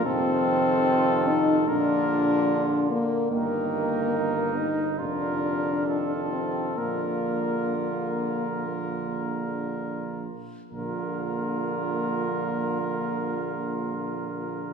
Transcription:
<<
  \new Staff \with { instrumentName = "Cornet" } { \time 4/4 \key bes \major \tempo 4 = 65 a'2 bes'4. r8 | bes'2 bes'4 a'4 | bes'2.~ bes'8 r8 | bes'1 | }
  \new Staff \with { instrumentName = "Trumpet" } { \time 4/4 \key bes \major f'2 f'4. r8 | ees'2 f'4 f'4 | f'2.~ f'8 r8 | f'1 | }
  \new Staff \with { instrumentName = "French horn" } { \time 4/4 \key bes \major c'4. ees'8 d'4. bes8 | bes4. ees'8 d'4. c'8 | bes2. r4 | bes1 | }
  \new Staff \with { instrumentName = "Trombone" } { \clef bass \time 4/4 \key bes \major ees2 d2 | ees4. r8 d4 ees4 | d2.~ d8 r8 | d1 | }
  \new Staff \with { instrumentName = "Tuba" } { \clef bass \time 4/4 \key bes \major f,,2 bes,,4. r8 | g,,2 f,,2 | bes,,2.~ bes,,8 r8 | bes,,1 | }
>>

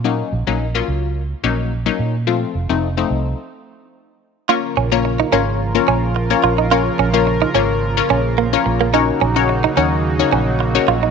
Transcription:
<<
  \new Staff \with { instrumentName = "Synth stab" } { \time 4/4 \key bes \minor \tempo 4 = 108 <ges bes des' ees'>8 r16 <ges bes des' ees'>16 r16 <ges bes des' f'>8. r8 <ges bes des' ees'>8 r16 <ges bes des' ees'>8 r16 | <f a c' f'>8 r16 <f a c' ees'>16 r16 <f a c' ees'>8. r2 | <bes des' f' bes' des''>8 r16 <bes des' f' bes' des''>8 r16 <bes des' f' bes' des''>8 r16 <bes des' f' bes' des''>8. r16 <bes des' f' bes' des''>8 r16 | <bes des' f' bes' des''>8 r16 <bes des' f' bes' des''>8 r16 <bes des' f' bes' des''>8 r16 <bes des' f' bes' des''>8. r16 <bes des' f' bes' des''>8 r16 |
<des' ees' ges' bes' des''>8 r16 <des' ees' ges' bes' des''>8 r16 <des' ees' ges' bes' des''>8 r16 <des' ees' ges' bes' des''>8. r16 <des' ees' ges' bes' des''>8 r16 | }
  \new Staff \with { instrumentName = "Clean electric guitar" } { \time 4/4 \key bes \minor r1 | r1 | f'16 r16 des'16 r8 ees'16 des'16 r8. des'16 r8. f'16 ees'16 | f'16 r16 des'16 r8 ees'16 des'16 r8. des'16 r16 bes16 r8 bes16 |
ees'16 r16 des'16 r8 ees'16 des'16 r8. des'16 r8. f'16 ees'16 | }
  \new Staff \with { instrumentName = "Analog synth pad" } { \time 4/4 \key bes \minor << { r1 | r1 | <f f' bes'>1~ | <f f' bes'>1 |
<ges ees' ges'>1 | } \\ { r1 | r1 | <des bes>1~ | <des bes>1~ |
<des bes>1 | } >> }
  \new Staff \with { instrumentName = "Fingered electric bass" } { \clef bass \time 4/4 \key bes \minor bes,8 bes,,16 bes,,8. des,4 bes,,4 bes,8~ | bes,8 f,,16 f,,8. c,8 r2 | r8 bes,,4 aes,,4 bes,,4 bes,,8~ | bes,,8 bes,,4 aes,,4 bes,,4 bes,,8~ |
bes,,8 bes,,4 ees,4 bes,,4 bes,,8 | }
>>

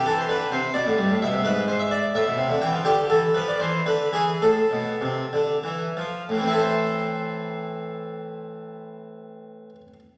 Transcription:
<<
  \new Staff \with { instrumentName = "Harpsichord" } { \time 6/8 \key a \minor \tempo 4. = 69 a'16 c''16 b'8 c''8 d''4 e''8 | b'8 c''16 e''16 d''8 e''4 g''8 | g'8 a'8 b'16 d''16 c''8 b'8 gis'8 | a'2~ a'8 r8 |
<a, e c' e' a' c''>2.~ | <a, e c' e' a' c''>2. | }
  \new Staff \with { instrumentName = "Harpsichord" } { \clef bass \time 6/8 \key a \minor e8 d8 c8 b,16 a,16 g,16 a,16 b,16 c16 | gis,4. a,16 b,16 c16 d16 e16 f16 | d8 e8 f8 e8 d8 e8 | a,8 b,8 c8 d8 e8 f8 |
r2. | r2. | }
>>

